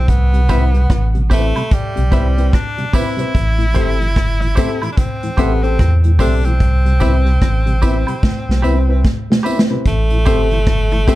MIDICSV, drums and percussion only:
0, 0, Header, 1, 2, 480
1, 0, Start_track
1, 0, Key_signature, 0, "major"
1, 0, Tempo, 814111
1, 50, Time_signature, 4, 2, 24, 8
1, 6575, End_track
2, 0, Start_track
2, 0, Title_t, "Drums"
2, 48, Note_on_c, 9, 42, 83
2, 49, Note_on_c, 9, 36, 93
2, 107, Note_off_c, 9, 42, 0
2, 108, Note_off_c, 9, 36, 0
2, 198, Note_on_c, 9, 42, 50
2, 257, Note_off_c, 9, 42, 0
2, 285, Note_on_c, 9, 42, 67
2, 290, Note_on_c, 9, 54, 51
2, 292, Note_on_c, 9, 36, 96
2, 344, Note_off_c, 9, 42, 0
2, 349, Note_off_c, 9, 54, 0
2, 351, Note_off_c, 9, 36, 0
2, 436, Note_on_c, 9, 42, 45
2, 495, Note_off_c, 9, 42, 0
2, 529, Note_on_c, 9, 42, 73
2, 530, Note_on_c, 9, 36, 104
2, 531, Note_on_c, 9, 37, 90
2, 588, Note_off_c, 9, 42, 0
2, 589, Note_off_c, 9, 36, 0
2, 590, Note_off_c, 9, 37, 0
2, 675, Note_on_c, 9, 42, 44
2, 734, Note_off_c, 9, 42, 0
2, 771, Note_on_c, 9, 42, 80
2, 772, Note_on_c, 9, 36, 82
2, 774, Note_on_c, 9, 54, 77
2, 830, Note_off_c, 9, 42, 0
2, 831, Note_off_c, 9, 36, 0
2, 833, Note_off_c, 9, 54, 0
2, 918, Note_on_c, 9, 42, 56
2, 919, Note_on_c, 9, 76, 75
2, 977, Note_off_c, 9, 42, 0
2, 978, Note_off_c, 9, 76, 0
2, 1008, Note_on_c, 9, 42, 99
2, 1011, Note_on_c, 9, 36, 114
2, 1067, Note_off_c, 9, 42, 0
2, 1070, Note_off_c, 9, 36, 0
2, 1158, Note_on_c, 9, 42, 57
2, 1217, Note_off_c, 9, 42, 0
2, 1248, Note_on_c, 9, 42, 71
2, 1249, Note_on_c, 9, 36, 94
2, 1254, Note_on_c, 9, 54, 51
2, 1307, Note_off_c, 9, 42, 0
2, 1308, Note_off_c, 9, 36, 0
2, 1313, Note_off_c, 9, 54, 0
2, 1401, Note_on_c, 9, 42, 53
2, 1460, Note_off_c, 9, 42, 0
2, 1493, Note_on_c, 9, 42, 80
2, 1494, Note_on_c, 9, 36, 108
2, 1498, Note_on_c, 9, 37, 94
2, 1552, Note_off_c, 9, 36, 0
2, 1552, Note_off_c, 9, 42, 0
2, 1557, Note_off_c, 9, 37, 0
2, 1639, Note_on_c, 9, 42, 53
2, 1698, Note_off_c, 9, 42, 0
2, 1730, Note_on_c, 9, 36, 90
2, 1733, Note_on_c, 9, 54, 75
2, 1736, Note_on_c, 9, 46, 77
2, 1789, Note_off_c, 9, 36, 0
2, 1792, Note_off_c, 9, 54, 0
2, 1795, Note_off_c, 9, 46, 0
2, 1877, Note_on_c, 9, 42, 54
2, 1936, Note_off_c, 9, 42, 0
2, 1974, Note_on_c, 9, 36, 94
2, 1977, Note_on_c, 9, 42, 81
2, 2033, Note_off_c, 9, 36, 0
2, 2036, Note_off_c, 9, 42, 0
2, 2123, Note_on_c, 9, 42, 46
2, 2182, Note_off_c, 9, 42, 0
2, 2210, Note_on_c, 9, 54, 54
2, 2215, Note_on_c, 9, 42, 66
2, 2217, Note_on_c, 9, 36, 88
2, 2269, Note_off_c, 9, 54, 0
2, 2274, Note_off_c, 9, 42, 0
2, 2276, Note_off_c, 9, 36, 0
2, 2365, Note_on_c, 9, 42, 50
2, 2424, Note_off_c, 9, 42, 0
2, 2454, Note_on_c, 9, 36, 105
2, 2457, Note_on_c, 9, 42, 73
2, 2458, Note_on_c, 9, 37, 94
2, 2513, Note_off_c, 9, 36, 0
2, 2516, Note_off_c, 9, 42, 0
2, 2517, Note_off_c, 9, 37, 0
2, 2603, Note_on_c, 9, 42, 45
2, 2662, Note_off_c, 9, 42, 0
2, 2693, Note_on_c, 9, 54, 71
2, 2697, Note_on_c, 9, 36, 91
2, 2702, Note_on_c, 9, 42, 75
2, 2704, Note_on_c, 9, 37, 57
2, 2752, Note_off_c, 9, 54, 0
2, 2756, Note_off_c, 9, 36, 0
2, 2761, Note_off_c, 9, 42, 0
2, 2763, Note_off_c, 9, 37, 0
2, 2840, Note_on_c, 9, 76, 78
2, 2845, Note_on_c, 9, 42, 58
2, 2899, Note_off_c, 9, 76, 0
2, 2904, Note_off_c, 9, 42, 0
2, 2933, Note_on_c, 9, 36, 113
2, 2933, Note_on_c, 9, 42, 99
2, 2992, Note_off_c, 9, 36, 0
2, 2992, Note_off_c, 9, 42, 0
2, 3081, Note_on_c, 9, 42, 60
2, 3140, Note_off_c, 9, 42, 0
2, 3170, Note_on_c, 9, 36, 89
2, 3171, Note_on_c, 9, 42, 77
2, 3176, Note_on_c, 9, 54, 48
2, 3229, Note_off_c, 9, 36, 0
2, 3230, Note_off_c, 9, 42, 0
2, 3235, Note_off_c, 9, 54, 0
2, 3324, Note_on_c, 9, 42, 53
2, 3383, Note_off_c, 9, 42, 0
2, 3415, Note_on_c, 9, 36, 111
2, 3416, Note_on_c, 9, 42, 86
2, 3421, Note_on_c, 9, 37, 92
2, 3474, Note_off_c, 9, 36, 0
2, 3475, Note_off_c, 9, 42, 0
2, 3480, Note_off_c, 9, 37, 0
2, 3559, Note_on_c, 9, 42, 54
2, 3618, Note_off_c, 9, 42, 0
2, 3650, Note_on_c, 9, 36, 99
2, 3656, Note_on_c, 9, 54, 79
2, 3657, Note_on_c, 9, 46, 85
2, 3709, Note_off_c, 9, 36, 0
2, 3715, Note_off_c, 9, 54, 0
2, 3716, Note_off_c, 9, 46, 0
2, 3800, Note_on_c, 9, 42, 51
2, 3859, Note_off_c, 9, 42, 0
2, 3892, Note_on_c, 9, 42, 74
2, 3893, Note_on_c, 9, 36, 95
2, 3951, Note_off_c, 9, 42, 0
2, 3952, Note_off_c, 9, 36, 0
2, 4043, Note_on_c, 9, 42, 52
2, 4102, Note_off_c, 9, 42, 0
2, 4129, Note_on_c, 9, 54, 58
2, 4133, Note_on_c, 9, 42, 64
2, 4137, Note_on_c, 9, 36, 87
2, 4188, Note_off_c, 9, 54, 0
2, 4192, Note_off_c, 9, 42, 0
2, 4196, Note_off_c, 9, 36, 0
2, 4281, Note_on_c, 9, 42, 48
2, 4340, Note_off_c, 9, 42, 0
2, 4372, Note_on_c, 9, 42, 70
2, 4373, Note_on_c, 9, 36, 97
2, 4374, Note_on_c, 9, 37, 101
2, 4431, Note_off_c, 9, 42, 0
2, 4432, Note_off_c, 9, 36, 0
2, 4433, Note_off_c, 9, 37, 0
2, 4519, Note_on_c, 9, 42, 48
2, 4578, Note_off_c, 9, 42, 0
2, 4613, Note_on_c, 9, 54, 73
2, 4614, Note_on_c, 9, 42, 76
2, 4615, Note_on_c, 9, 36, 83
2, 4672, Note_off_c, 9, 54, 0
2, 4673, Note_off_c, 9, 42, 0
2, 4674, Note_off_c, 9, 36, 0
2, 4757, Note_on_c, 9, 76, 77
2, 4762, Note_on_c, 9, 42, 57
2, 4816, Note_off_c, 9, 76, 0
2, 4821, Note_off_c, 9, 42, 0
2, 4853, Note_on_c, 9, 36, 113
2, 4858, Note_on_c, 9, 38, 60
2, 4912, Note_off_c, 9, 36, 0
2, 4917, Note_off_c, 9, 38, 0
2, 5018, Note_on_c, 9, 38, 54
2, 5077, Note_off_c, 9, 38, 0
2, 5095, Note_on_c, 9, 54, 53
2, 5154, Note_off_c, 9, 54, 0
2, 5333, Note_on_c, 9, 36, 106
2, 5337, Note_on_c, 9, 38, 68
2, 5392, Note_off_c, 9, 36, 0
2, 5396, Note_off_c, 9, 38, 0
2, 5494, Note_on_c, 9, 38, 88
2, 5553, Note_off_c, 9, 38, 0
2, 5577, Note_on_c, 9, 54, 76
2, 5636, Note_off_c, 9, 54, 0
2, 5655, Note_on_c, 9, 38, 87
2, 5714, Note_off_c, 9, 38, 0
2, 5810, Note_on_c, 9, 42, 79
2, 5811, Note_on_c, 9, 36, 96
2, 5869, Note_off_c, 9, 42, 0
2, 5870, Note_off_c, 9, 36, 0
2, 5955, Note_on_c, 9, 42, 47
2, 6014, Note_off_c, 9, 42, 0
2, 6044, Note_on_c, 9, 42, 72
2, 6050, Note_on_c, 9, 54, 59
2, 6053, Note_on_c, 9, 36, 96
2, 6103, Note_off_c, 9, 42, 0
2, 6108, Note_off_c, 9, 54, 0
2, 6112, Note_off_c, 9, 36, 0
2, 6194, Note_on_c, 9, 42, 52
2, 6253, Note_off_c, 9, 42, 0
2, 6289, Note_on_c, 9, 42, 84
2, 6290, Note_on_c, 9, 36, 114
2, 6291, Note_on_c, 9, 37, 104
2, 6348, Note_off_c, 9, 42, 0
2, 6349, Note_off_c, 9, 36, 0
2, 6350, Note_off_c, 9, 37, 0
2, 6433, Note_on_c, 9, 42, 51
2, 6492, Note_off_c, 9, 42, 0
2, 6529, Note_on_c, 9, 42, 79
2, 6531, Note_on_c, 9, 36, 87
2, 6531, Note_on_c, 9, 37, 57
2, 6536, Note_on_c, 9, 54, 74
2, 6575, Note_off_c, 9, 36, 0
2, 6575, Note_off_c, 9, 37, 0
2, 6575, Note_off_c, 9, 42, 0
2, 6575, Note_off_c, 9, 54, 0
2, 6575, End_track
0, 0, End_of_file